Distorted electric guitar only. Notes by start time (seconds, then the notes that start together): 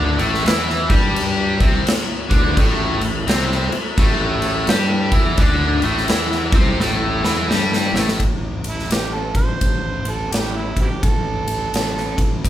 Already playing: D3 D4
0.18 A2 A3
0.45 E3 E4
0.90 G3 G4
1.61 C3 C4
1.86 muted distorted electric guitar stroke
2.29 D3 D4
2.57 A2 A3
3.01 A2
3.27 C3 C4
3.72 muted distorted electric guitar stroke
3.99 A2 A3
4.68 G3 G4
5.12 E3 E4
5.38 D3 D4
5.82 A2 A3
6.08 E3 E4
6.54 C3 C4
6.80 A2 A3
7.24 E3 E4
7.49 G3 G4
7.93 A2 A3